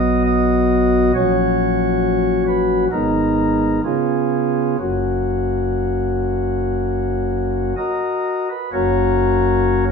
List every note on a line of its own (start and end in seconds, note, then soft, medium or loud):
0.00 1.12 B1 medium
0.00 1.12 B2 medium
0.00 1.12 F#3 medium
0.00 1.11 B3 medium
0.00 1.12 F#4 medium
0.00 0.23 D#5 loud
0.26 1.12 D#5 loud
1.15 2.88 A#1 medium
1.15 2.87 A#2 medium
1.15 2.88 F#3 medium
1.15 2.88 C#4 medium
1.15 2.88 F#4 medium
1.15 2.43 C#5 loud
2.47 2.85 B4 loud
2.91 3.80 G#1 medium
2.91 3.80 G#2 medium
2.91 3.80 G#3 medium
2.91 3.80 B3 medium
2.91 3.80 D#4 medium
2.91 3.80 A#4 loud
3.84 4.76 C#3 medium
3.84 4.76 B3 medium
3.84 4.76 C#4 medium
3.84 4.76 F4 soft
3.84 4.76 G#4 medium
4.79 7.73 F#1 medium
4.79 7.73 F#2 medium
4.79 7.73 A#3 soft
4.79 7.73 C#4 soft
4.79 7.75 F#4 medium
7.77 8.48 F#4 medium
7.77 8.48 A#4 medium
7.77 8.48 D#5 medium
8.50 8.70 B4 medium
8.72 9.92 F#1 medium
8.72 9.92 F#2 medium
8.72 9.92 A#3 medium
8.72 9.92 C#4 medium
8.72 9.84 F#4 medium
8.72 9.85 A#4 medium
8.72 9.84 C#5 loud
9.89 9.92 A#4 loud